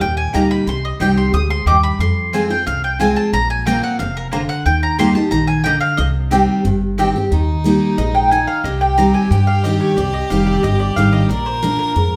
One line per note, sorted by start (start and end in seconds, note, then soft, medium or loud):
0.00 0.29 D#2 medium
0.00 0.64 A#2 medium
0.00 0.17 G5 loud
0.17 0.33 G#5 loud
0.33 0.62 D2 medium
0.33 0.65 G3 medium
0.33 0.42 A#3 medium
0.33 0.66 A#3 loud
0.33 0.66 D#4 medium
0.33 0.43 G4 medium
0.33 0.66 G4 medium
0.33 0.43 D#5 medium
0.33 0.43 A#5 loud
0.33 0.50 A#5 medium
0.51 0.67 B5 loud
0.67 0.90 C2 medium
0.67 0.84 C6 loud
0.85 1.00 D#5 medium
1.00 1.28 C2 medium
1.00 1.32 D#3 medium
1.00 1.32 G3 medium
1.00 1.09 C4 medium
1.00 1.33 C4 medium
1.00 1.09 G4 medium
1.00 1.33 G4 loud
1.00 1.09 D#5 medium
1.00 1.10 G5 loud
1.00 1.17 G5 medium
1.17 1.33 C6 medium
1.33 1.61 D2 medium
1.33 1.65 G#2 medium
1.33 1.50 D#6 loud
1.50 1.66 C6 loud
1.66 1.94 D#2 medium
1.66 1.99 G2 medium
1.66 1.75 C4 medium
1.66 1.76 G4 medium
1.66 1.76 D#5 medium
1.66 1.76 G5 loud
1.66 1.83 D6 loud
1.83 1.99 B5 loud
1.99 2.47 F2 medium
1.99 2.64 F2 medium
1.99 2.47 C6 loud
2.33 2.49 F3 medium
2.33 2.50 G#3 medium
2.33 2.42 C4 medium
2.33 2.50 C4 medium
2.33 2.42 F4 medium
2.33 2.49 F4 medium
2.33 2.43 C5 medium
2.33 2.43 G#5 medium
2.50 2.67 C4 medium
2.50 2.66 F4 medium
2.50 2.66 G5 medium
2.67 3.14 C2 medium
2.67 3.30 C3 medium
2.67 2.83 F5 loud
2.84 3.00 G5 medium
2.99 3.31 F3 medium
2.99 3.32 G#3 medium
2.99 3.08 C4 medium
2.99 3.32 C4 medium
2.99 3.09 F4 medium
2.99 3.32 F4 loud
2.99 3.09 C5 medium
2.99 3.09 G#5 medium
2.99 3.16 G#5 loud
3.16 3.32 A5 loud
3.33 3.80 A#1 loud
3.33 3.96 A#2 medium
3.33 3.49 A#5 loud
3.50 3.66 G#5 loud
3.66 3.98 F3 medium
3.66 3.75 A#3 medium
3.66 3.98 A#3 medium
3.66 3.98 C4 medium
3.66 3.75 F4 medium
3.66 3.99 F4 loud
3.66 3.75 C5 medium
3.66 3.83 G5 loud
3.66 3.75 A#5 medium
3.83 3.99 F#5 medium
3.99 4.47 F1 medium
3.99 4.31 C3 medium
3.99 4.15 F5 medium
4.17 4.26 A#4 medium
4.31 4.64 D3 medium
4.31 4.41 A#3 medium
4.31 4.41 F4 medium
4.31 4.42 C5 medium
4.31 4.42 A#5 medium
4.49 4.65 F#5 loud
4.66 5.13 D#2 loud
4.66 5.29 D#3 medium
4.66 4.82 G5 medium
4.83 4.99 A#5 medium
4.98 5.15 G3 medium
4.98 5.08 A#3 medium
4.98 5.15 A#3 loud
4.98 5.16 D#4 medium
4.98 5.08 G4 medium
4.98 5.14 G4 loud
4.98 5.08 D#5 medium
4.98 5.08 A#5 medium
4.98 5.15 C6 loud
5.15 5.32 D#4 medium
5.15 5.31 G4 medium
5.15 5.31 A5 medium
5.31 5.79 A#1 medium
5.31 5.64 D#3 medium
5.31 5.47 A#5 loud
5.47 5.63 G#5 loud
5.64 5.97 D3 medium
5.64 5.74 A#3 medium
5.64 5.75 G4 loud
5.64 5.75 D#5 loud
5.64 5.80 G5 loud
5.64 5.75 A#5 loud
5.81 5.97 F5 loud
5.97 6.46 C2 loud
5.97 6.62 C3 medium
5.97 6.08 D#5 loud
6.31 6.63 D#3 loud
6.31 6.63 G3 medium
6.31 6.40 C4 medium
6.31 6.64 C4 loud
6.31 6.41 G4 medium
6.31 6.64 G4 loud
6.31 6.41 D#5 loud
6.31 6.41 G5 loud
6.65 7.12 G1 loud
6.65 7.28 G2 medium
6.98 7.14 D#3 medium
6.98 7.15 G3 medium
6.98 7.07 C4 medium
6.98 7.15 C4 medium
6.98 7.07 G4 loud
6.98 7.14 G4 loud
6.98 7.08 D#5 loud
6.98 7.08 G5 loud
7.16 7.32 C4 soft
7.16 7.31 G4 medium
7.31 7.79 D#2 medium
7.31 7.95 D#3 medium
7.31 8.60 D#4 loud
7.64 7.96 G3 medium
7.64 7.97 A#3 medium
7.64 7.97 D#4 medium
7.64 7.97 G4 medium
7.98 8.45 A#1 medium
7.98 8.30 G#2 medium
7.98 8.14 D#5 medium
8.15 8.31 G5 medium
8.31 8.63 D#3 medium
8.31 8.47 G#5 loud
8.47 8.64 F5 medium
8.64 9.12 C2 medium
8.64 9.28 C3 medium
8.64 11.31 G4 loud
8.64 8.80 D#5 medium
8.81 8.97 G5 loud
8.98 9.29 D#3 medium
8.98 9.30 G3 medium
8.98 9.30 C4 medium
8.98 9.30 G4 medium
8.98 9.14 A#5 medium
9.14 9.30 G#5 medium
9.31 9.78 G2 medium
9.31 9.94 G2 medium
9.31 9.47 G5 medium
9.47 9.63 F5 loud
9.64 9.96 D#3 medium
9.64 9.96 G3 medium
9.64 9.96 C4 medium
9.64 9.97 G4 medium
9.64 9.80 D#5 medium
9.80 9.96 C#5 medium
9.97 10.21 C2 medium
9.97 10.60 C3 medium
9.97 10.13 D5 medium
10.13 10.30 D#5 medium
10.30 10.59 F1 medium
10.30 10.62 D#3 medium
10.30 10.62 G3 medium
10.30 10.62 C4 medium
10.30 10.63 G4 loud
10.30 10.46 F5 medium
10.47 10.63 D5 medium
10.63 10.92 G1 medium
10.63 11.27 G2 medium
10.63 10.79 D#5 loud
10.80 10.96 D5 medium
10.96 11.25 G#1 loud
10.96 11.28 D#3 medium
10.96 11.29 G3 medium
10.96 11.29 C4 medium
10.96 11.29 G4 medium
10.96 11.13 F5 medium
11.13 11.29 D#5 medium
11.29 11.77 A#1 loud
11.29 11.93 A#2 medium
11.29 12.16 A#4 loud
11.29 11.46 D5 medium
11.46 11.62 C5 medium
11.62 11.94 F3 medium
11.62 11.95 A#3 medium
11.62 11.95 D4 loud
11.62 11.95 F4 loud
11.62 11.78 A#4 medium
11.79 12.16 A#4 medium
11.96 12.16 F2 medium
11.96 12.16 G#2 medium